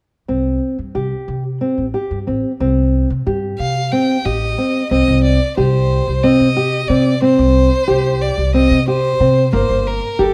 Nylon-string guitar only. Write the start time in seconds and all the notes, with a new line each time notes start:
0.28 C4
0.95 G4
1.61 C4
1.94 G4
2.27 C4
2.61 C4
3.27 G4
3.92 C4
4.25 G4
4.58 C4
4.91 C4
5.57 G4
6.24 C4
6.57 G4
6.89 C4
7.22 C4
7.88 G4
8.54 C4
8.88 G4
9.20 C4
9.53 A#3
10.19 G4